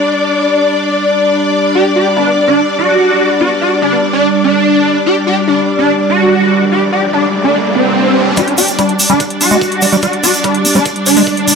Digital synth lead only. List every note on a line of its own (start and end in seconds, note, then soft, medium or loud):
1.75 1.84 G4 loud
1.96 2.05 G4 medium
2.17 2.30 D4 medium
2.48 2.61 D4 loud
2.79 3.32 F#4 loud
3.41 3.49 F#4 loud
3.61 3.70 F#4 medium
3.82 3.95 D4 loud
4.13 4.26 D4 loud
4.44 4.98 D4 loud
5.06 5.15 G4 medium
5.27 5.36 G4 medium
5.48 5.61 D4 medium
5.79 5.92 D4 loud
6.10 6.64 F#4 loud
6.72 6.80 G4 medium
6.93 7.01 G4 medium
7.13 7.26 D4 loud
7.44 7.57 D4 loud
7.75 8.29 C4 loud
8.37 8.46 G4 loud
8.58 8.67 G4 medium
8.79 8.92 D4 loud
9.10 9.23 D4 medium
9.41 9.95 F#4 loud
10.03 10.11 F#4 medium
10.23 10.32 F#4 medium
10.44 10.57 D4 loud
10.75 10.88 D4 medium
11.06 11.55 D4 loud